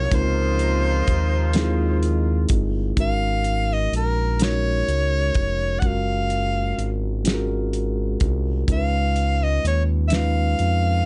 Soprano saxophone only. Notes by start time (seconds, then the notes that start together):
Already playing: C#5
0.15 C5
3.00 F5
3.73 D#5
3.96 A#4
4.44 C#5
5.79 F#5
5.87 F5
8.72 F5
9.43 D#5
9.67 C#5
10.08 E5
10.15 F5